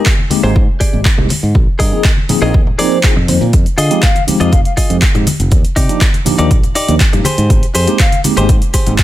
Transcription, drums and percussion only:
0.06 kick, clap
0.19 high conga, maracas
0.30 open hi-hat, high conga, maracas
0.43 maracas
0.56 kick, maracas
0.81 kick, open hi-hat, maracas
0.93 maracas
1.05 kick, clap
1.18 low conga
1.29 open hi-hat, high conga, maracas
1.43 maracas
1.55 kick, maracas
1.79 kick, open hi-hat, maracas
1.92 maracas
2.04 kick, clap
2.17 high conga, maracas
2.29 open hi-hat, high conga, low conga, maracas
2.42 maracas
2.54 kick, maracas
2.67 low conga
2.79 open hi-hat, maracas
2.91 maracas
3.03 kick, clap
3.16 low conga
3.28 open hi-hat, high conga, maracas
3.42 maracas
3.53 kick, closed hi-hat, maracas, shaker
3.66 closed hi-hat, shaker
3.78 open hi-hat, shaker, maracas
3.90 closed hi-hat, maracas, shaker
4.03 kick, clap, closed hi-hat, shaker
4.15 closed hi-hat, high conga, maracas, shaker
4.28 open hi-hat, high conga, shaker, maracas
4.40 closed hi-hat, maracas, shaker
4.52 kick, closed hi-hat, maracas, shaker
4.65 closed hi-hat, shaker
4.77 kick, open hi-hat, maracas, shaker
4.90 closed hi-hat, maracas, shaker
5.02 kick, clap, closed hi-hat, shaker
5.14 closed hi-hat, low conga, shaker
5.27 open hi-hat, high conga, maracas, shaker
5.40 closed hi-hat, maracas, shaker
5.51 kick, closed hi-hat, maracas, shaker
5.65 closed hi-hat, shaker
5.76 kick, open hi-hat, shaker, maracas
5.89 closed hi-hat, maracas, shaker
6.01 kick, clap, closed hi-hat, shaker
6.14 closed hi-hat, high conga, maracas, shaker
6.26 open hi-hat, high conga, low conga, shaker, maracas
6.38 closed hi-hat, maracas, shaker
6.51 kick, closed hi-hat, maracas, shaker
6.63 closed hi-hat, low conga, shaker
6.75 open hi-hat, maracas, shaker
6.88 closed hi-hat, maracas, shaker
7.00 kick, clap, closed hi-hat, shaker
7.13 closed hi-hat, low conga, shaker
7.24 open hi-hat, high conga, maracas, shaker
7.38 closed hi-hat, maracas, shaker
7.50 kick, closed hi-hat, maracas, shaker
7.63 closed hi-hat, shaker
7.75 open hi-hat, maracas, shaker
7.87 closed hi-hat, maracas, shaker
7.99 kick, clap, closed hi-hat, shaker
8.12 closed hi-hat, high conga, maracas, shaker
8.24 open hi-hat, high conga, maracas, shaker
8.37 closed hi-hat, maracas, shaker
8.49 kick, closed hi-hat, shaker, maracas
8.62 closed hi-hat, shaker
8.74 kick, open hi-hat, shaker, maracas
8.86 closed hi-hat, maracas, shaker
8.98 kick, clap, closed hi-hat, maracas, shaker

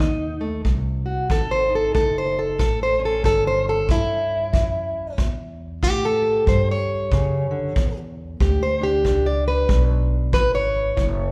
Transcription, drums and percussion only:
0.00 kick
0.65 kick
1.30 kick
1.95 kick
2.59 kick
3.24 kick
3.89 kick
4.54 kick
5.18 kick
5.83 kick
6.47 kick
7.12 kick
7.76 kick
8.40 kick
9.05 kick
9.69 kick
10.33 kick
10.97 kick

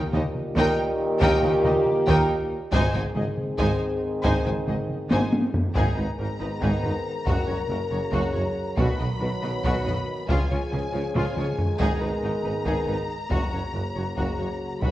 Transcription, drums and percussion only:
0.13 taiko mid
0.35 taiko mid
0.56 taiko
1.21 taiko
1.43 taiko mid
1.65 taiko mid
1.86 taiko mid
2.08 taiko
2.73 taiko
2.94 taiko mid
3.16 taiko mid
3.38 taiko mid
3.59 taiko
4.24 taiko
4.46 taiko mid
4.67 taiko mid
4.89 taiko mid
5.11 taiko high
5.33 taiko high
5.54 taiko low
5.75 taiko
6.62 taiko
6.84 taiko low
7.27 taiko
8.13 taiko
8.34 taiko low
8.77 taiko
9.64 taiko
9.86 taiko low
10.29 taiko
11.15 taiko low-mid
11.37 taiko mid
11.59 taiko low
11.80 taiko
12.66 taiko
13.31 taiko
14.18 taiko
14.82 taiko

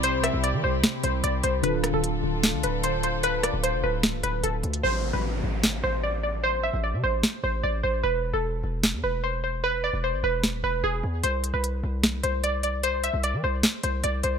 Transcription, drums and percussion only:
0.03 closed hi-hat
0.23 cross-stick, closed hi-hat
0.44 closed hi-hat
0.84 snare, closed hi-hat
1.04 closed hi-hat
1.24 closed hi-hat
1.44 closed hi-hat
1.64 closed hi-hat
1.84 cross-stick, closed hi-hat
2.04 closed hi-hat
2.44 snare, closed hi-hat
2.63 closed hi-hat
2.84 closed hi-hat
3.03 closed hi-hat
3.23 closed hi-hat
3.43 cross-stick, closed hi-hat
3.64 closed hi-hat
4.03 snare, closed hi-hat
4.23 closed hi-hat
4.44 closed hi-hat
4.63 closed hi-hat, open hi-hat
4.74 closed hi-hat
5.63 snare
7.23 snare
8.83 snare
10.44 snare
11.24 closed hi-hat
11.44 closed hi-hat
11.64 closed hi-hat
12.04 snare, closed hi-hat
12.24 closed hi-hat
12.44 closed hi-hat
12.63 closed hi-hat
12.83 closed hi-hat
13.04 closed hi-hat
13.24 closed hi-hat
13.63 snare, closed hi-hat
13.83 closed hi-hat
14.04 closed hi-hat
14.23 closed hi-hat

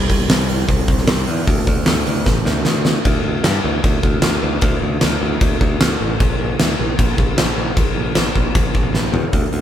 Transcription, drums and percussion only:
0.10 kick, open hi-hat
0.30 snare, open hi-hat
0.49 open hi-hat
0.69 kick, open hi-hat
0.88 kick, open hi-hat
0.98 snare
1.07 snare, open hi-hat
1.27 open hi-hat
1.47 kick, open hi-hat
1.67 kick, open hi-hat
1.86 snare, open hi-hat
2.07 open hi-hat
2.26 kick, snare
2.46 snare
2.65 snare
2.85 snare
3.05 kick, crash
3.44 snare, crash
3.84 kick, crash
4.03 kick
4.22 snare, crash
4.61 kick, crash
5.01 snare, crash
5.41 kick, crash
5.61 kick
5.81 snare, crash
6.20 kick, crash
6.59 snare, crash
6.99 kick, crash
7.18 kick
7.38 snare, crash
7.77 kick, crash
8.15 snare, crash
8.36 kick
8.55 kick, crash
8.75 kick
8.95 snare
9.14 floor tom
9.33 kick, open hi-hat
9.53 open hi-hat

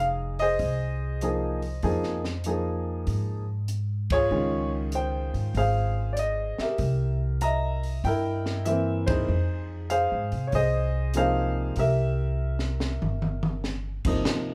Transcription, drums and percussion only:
0.39 open hi-hat
0.59 kick, open hi-hat
1.21 closed hi-hat
1.62 open hi-hat
1.83 kick, open hi-hat
2.03 snare
2.24 snare
2.44 closed hi-hat
3.07 kick, open hi-hat
3.68 closed hi-hat
4.10 kick, ride
4.92 closed hi-hat
5.34 open hi-hat
5.55 kick, open hi-hat
6.17 closed hi-hat
6.58 snare
6.78 kick, open hi-hat
7.41 closed hi-hat
7.83 open hi-hat
8.04 kick, open hi-hat
8.46 snare
8.66 closed hi-hat
9.07 kick, ride
9.90 closed hi-hat
10.32 open hi-hat
10.52 kick, open hi-hat
11.14 closed hi-hat
11.76 kick, open hi-hat
12.59 snare
12.80 snare
13.02 mid tom
13.22 mid tom
13.43 mid tom
13.64 snare
14.05 kick, crash
14.25 snare

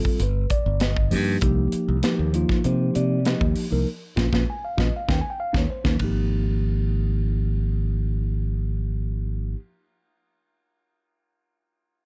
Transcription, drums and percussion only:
0.05 kick
0.20 closed hi-hat
0.50 kick, closed hi-hat
0.80 snare, closed hi-hat
0.96 kick
1.11 open hi-hat
1.41 kick, closed hi-hat
1.72 closed hi-hat
2.03 snare, closed hi-hat
2.34 closed hi-hat
2.49 kick, snare
2.64 closed hi-hat
2.95 closed hi-hat
3.25 snare, closed hi-hat
3.41 kick
3.56 open hi-hat
4.17 kick, snare
4.33 kick, snare
4.78 kick, snare
5.09 kick, snare
5.54 kick, snare
5.85 kick, snare
5.99 kick, ride

